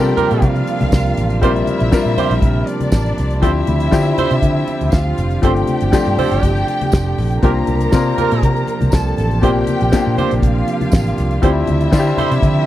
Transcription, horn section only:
0.17 0.50 A#3 loud
0.17 0.50 F4 loud
0.17 0.50 G4 loud
0.17 0.50 A#4 loud
1.42 1.51 C4 medium
1.42 1.51 F4 medium
1.42 1.51 G4 loud
1.42 1.51 C5 loud
2.18 2.34 C4 loud
2.18 2.34 F4 loud
2.18 2.34 G4 loud
2.18 2.34 C5 loud
3.42 3.51 C4 medium
3.42 3.51 G4 loud
3.42 3.51 A4 medium
3.42 3.51 C5 medium
4.18 4.34 C4 loud
4.18 4.34 G4 medium
4.18 4.34 A4 loud
4.18 4.34 C5 loud
5.43 5.52 C4 loud
5.43 5.52 F4 medium
5.43 5.52 A4 medium
5.43 5.52 C5 loud
6.18 6.51 C4 loud
6.18 6.51 F4 loud
6.18 6.51 A4 loud
6.18 6.51 C5 loud
7.43 7.51 A#3 medium
7.43 7.51 F4 medium
7.43 7.52 G4 medium
7.43 7.51 A#4 medium
8.18 8.50 A#3 loud
8.18 8.50 F4 loud
8.18 8.50 G4 loud
8.18 8.50 A#4 loud
9.43 9.51 C4 medium
9.43 9.51 F4 medium
9.43 9.51 G4 medium
9.43 9.51 C5 loud
10.18 10.34 C4 loud
10.18 10.34 F4 loud
10.18 10.34 G4 loud
10.18 10.34 C5 loud
11.42 11.51 C4 medium
11.42 11.51 G4 medium
11.42 11.51 A4 medium
11.42 11.51 C5 medium
12.18 12.34 C4 medium
12.18 12.34 G4 medium
12.18 12.34 A4 medium
12.18 12.34 C5 loud

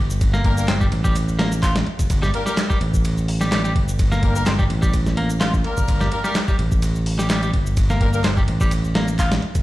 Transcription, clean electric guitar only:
0.34 0.67 A#3 medium
0.68 0.74 C4 medium
0.81 0.85 G3 medium
1.04 1.15 G3 medium
1.39 1.51 A#3 medium
1.62 1.75 F4 medium
2.22 2.30 G3 medium
2.46 2.56 G3 medium
2.70 2.78 G3 medium
3.41 3.50 G3 medium
3.51 3.63 G3 loud
3.64 3.72 G3 medium
4.12 4.45 A#3 medium
4.46 4.52 C4 medium
4.59 4.64 G3 medium
4.82 4.93 G3 medium
5.17 5.29 A#3 medium
5.40 5.53 F4 medium
6.01 6.09 G3 medium
6.24 6.35 G3 medium
6.48 6.56 G3 medium
7.19 7.28 G3 medium
7.30 7.41 G3 loud
7.43 7.50 G3 medium
7.90 8.23 A#3 medium
8.24 8.30 C4 medium
8.37 8.42 G3 medium
8.61 8.71 G3 medium
8.95 9.07 A#3 medium
9.19 9.31 F4 medium

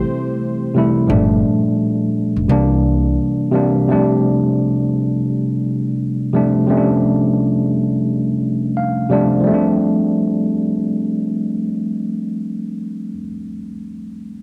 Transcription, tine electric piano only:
0.00 0.74 C3 medium
0.00 0.75 E3 medium
0.00 0.76 G3 medium
0.00 0.77 A3 medium
0.00 0.78 E4 medium
0.74 1.00 C3 medium
0.74 1.00 E3 medium
0.74 1.01 G3 medium
0.74 1.01 A3 medium
0.74 1.02 E4 loud
1.07 1.16 A2 medium
1.07 2.02 F3 medium
1.07 2.02 G3 medium
1.07 2.03 A3 medium
1.07 2.03 D4 loud
1.13 2.05 A#2 medium
2.48 3.36 C3 medium
2.48 3.36 E3 medium
2.48 3.37 G3 medium
2.48 3.37 A#3 medium
2.48 3.37 D4 medium
3.52 3.78 C3 medium
3.52 3.79 E3 medium
3.52 3.79 G3 medium
3.52 3.80 A#3 medium
3.52 3.80 D4 medium
3.89 4.82 C3 medium
3.89 4.82 F3 medium
3.89 4.83 G3 medium
3.89 4.83 A3 medium
3.89 4.84 D4 loud
6.33 6.58 C3 medium
6.33 6.59 F3 medium
6.33 6.59 G3 medium
6.33 6.60 A3 medium
6.33 6.60 D4 medium
6.67 7.61 C3 medium
6.67 7.61 F3 medium
6.67 7.62 G3 medium
6.67 7.62 A3 medium
6.67 6.77 C#4 medium
6.77 7.66 D4 medium
8.77 9.09 F5 medium
9.10 9.36 C3 medium
9.10 9.37 F3 medium
9.10 9.37 G3 medium
9.10 9.38 A3 medium
9.10 9.38 D4 loud
9.10 9.44 D5 medium
9.40 13.12 F3 medium
9.40 13.15 G3 medium
9.47 13.18 A3 medium
9.47 13.22 C4 medium
9.54 13.25 D4 medium

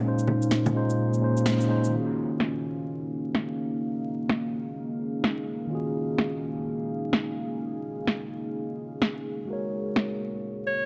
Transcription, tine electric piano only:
0.00 0.73 A#2 medium
0.00 0.02 G#3 medium
0.00 0.72 G#3 medium
0.00 0.04 C#4 medium
0.00 0.06 D#4 medium
0.00 0.08 C5 medium
0.04 0.73 C#4 medium
0.04 0.74 D#4 medium
0.04 0.75 C5 medium
0.73 0.92 A#2 medium
0.73 0.93 G#3 medium
0.73 0.93 C#4 medium
0.73 0.94 D#4 medium
0.77 0.94 C5 medium
1.20 1.65 A#2 medium
1.20 1.66 G#3 medium
1.20 1.67 C#4 medium
1.20 1.68 D#4 medium
1.24 1.68 C5 medium
1.67 1.86 A#2 medium
1.67 1.87 G#3 medium
1.67 1.87 C#4 medium
1.67 1.88 D#4 medium
1.67 1.88 C5 medium
1.88 5.66 D#3 medium
1.88 5.68 C#4 medium
1.93 5.69 F4 medium
1.93 5.70 F#4 medium
1.93 5.71 G#4 medium
5.67 9.45 D#3 medium
5.67 9.46 C#4 medium
5.67 9.47 F4 medium
5.73 9.46 F#4 medium
5.73 9.49 G#4 medium
9.45 10.86 G#3 medium
9.45 10.86 F#4 medium
9.50 10.86 A#4 medium
9.50 10.86 C#5 medium

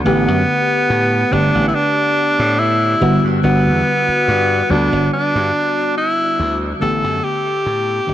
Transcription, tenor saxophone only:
0.06 1.34 B3 loud
1.33 1.67 D4 medium
1.68 1.76 E4 medium
1.74 2.60 D4 loud
2.59 3.24 E4 loud
3.44 4.72 B3 loud
4.70 5.12 D4 loud
5.13 5.93 D4 loud
5.97 6.58 E4 loud
6.82 7.25 A4 loud
7.24 8.14 G4 loud

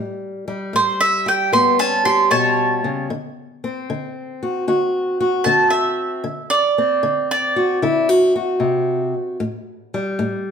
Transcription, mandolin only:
0.76 1.00 C5 medium
1.01 1.26 E5 medium
1.28 1.53 G5 medium
1.53 1.79 C6 medium
1.80 2.05 A5 medium
2.05 2.31 C6 medium
2.31 3.06 C#5 medium
2.31 3.08 A5 medium
5.44 5.71 A5 medium
5.70 6.48 E5 medium
6.50 7.27 D5 medium
7.31 8.07 D5 loud

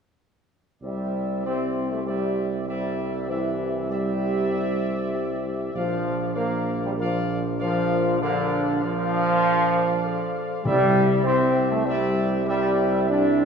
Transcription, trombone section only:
0.82 1.41 G3 medium
1.45 1.88 C4 medium
1.91 1.98 A3 medium
2.06 2.64 G3 medium
2.68 3.26 G3 medium
3.29 3.90 E3 medium
3.89 5.39 G3 medium
5.76 6.33 F3 medium
6.37 6.80 A#3 medium
6.84 6.91 G3 medium
7.00 7.57 F3 medium
7.62 8.18 F3 loud
8.21 8.79 D3 loud
8.83 10.35 F3 loud
10.64 11.22 G3 loud
11.24 11.67 C4 loud
11.71 11.86 A3 medium
11.84 12.44 G3 medium
12.45 13.05 G3 loud
13.09 13.45 D4 loud

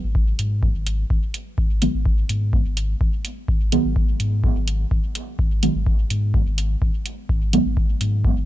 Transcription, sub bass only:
0.04 0.33 G#1 medium
0.39 0.69 G#2 medium
0.75 1.04 G#1 loud
1.10 1.19 G#1 medium
1.58 1.88 G#1 loud
1.94 2.23 G#1 medium
2.29 2.59 G#2 medium
2.66 2.95 G#1 loud
3.01 3.09 G#1 medium
3.48 3.78 G#1 loud
3.85 4.14 G#1 medium
4.20 4.50 G#2 medium
4.56 4.85 G#1 loud
4.91 5.00 G#1 medium
5.39 5.69 G#1 medium
5.75 6.04 G#1 medium
6.10 6.40 G#2 medium
6.47 6.76 G#1 loud
6.82 6.90 G#1 medium
7.29 7.59 G#1 loud
7.66 7.95 G#1 medium
8.01 8.30 G#2 medium
8.37 8.45 G#1 loud

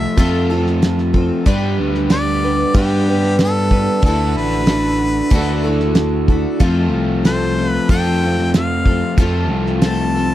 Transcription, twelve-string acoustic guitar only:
0.00 0.17 A3 medium
0.00 0.18 C4 medium
0.00 0.18 F4 medium
0.00 0.18 A4 medium
0.17 0.50 F3 medium
0.17 0.50 A3 medium
0.17 0.50 C4 loud
0.17 0.50 F4 medium
0.17 0.49 A4 medium
0.50 1.15 C4 soft
0.50 1.14 F4 medium
0.50 1.12 A4 medium
1.14 1.46 C4 soft
1.14 1.46 F4 soft
1.14 1.46 A4 soft
1.46 2.09 G3 medium
1.46 2.10 D4 medium
1.46 2.10 G4 loud
1.46 2.11 B4 loud
2.10 2.43 G3 medium
2.10 2.43 D4 medium
2.10 2.43 G4 medium
2.10 2.42 B4 medium
2.43 2.75 D4 soft
2.43 2.75 G4 soft
2.43 2.75 B4 soft
2.75 3.07 G3 medium
2.75 3.08 D4 medium
2.75 3.08 G4 medium
2.75 3.07 B4 medium
3.09 3.73 D4 soft
3.09 3.72 G4 soft
3.09 3.71 B4 medium
3.72 4.06 D4 soft
3.72 4.05 G4 soft
3.72 4.04 B4 medium
4.06 4.69 D3 medium
4.06 4.68 A3 medium
4.06 4.67 E4 medium
4.06 4.68 F#4 medium
4.06 4.70 A4 medium
4.68 5.32 A3 medium
4.68 5.32 E4 medium
4.68 5.32 F#4 medium
4.68 5.34 A4 medium
5.32 5.64 D3 medium
5.32 5.65 A3 medium
5.32 5.65 E4 medium
5.32 5.64 F#4 loud
5.32 5.63 A4 loud
5.64 6.30 E4 medium
5.64 6.29 F#4 medium
5.64 6.29 A4 medium
6.29 6.60 E4 soft
6.29 6.60 F#4 medium
6.29 6.60 A4 medium
6.60 7.25 F3 medium
6.60 7.23 A3 medium
6.60 7.24 C4 medium
6.60 7.25 F4 medium
6.60 7.26 A4 medium
7.25 7.57 A3 medium
7.25 7.58 C4 medium
7.25 7.57 F4 medium
7.25 7.55 A4 medium
7.56 7.89 C4 soft
7.56 7.90 F4 soft
7.56 7.89 A4 soft
7.90 8.22 F3 medium
7.90 8.22 A3 medium
7.90 8.22 C4 medium
7.90 8.23 F4 medium
7.90 8.22 A4 medium
8.23 8.88 C4 soft
8.23 8.86 F4 soft
8.23 8.85 A4 medium
8.86 9.19 C4 soft
8.86 9.19 F4 soft
8.86 9.18 A4 medium
9.19 9.83 F3 medium
9.19 9.83 A3 medium
9.19 9.84 C4 medium
9.19 9.84 F4 medium
9.19 9.84 A4 medium
9.84 10.15 A3 medium
9.84 10.16 C4 medium
9.84 10.16 F4 medium
9.84 10.14 A4 medium
10.16 10.35 C4 soft
10.16 10.35 F4 soft
10.16 10.35 A4 soft

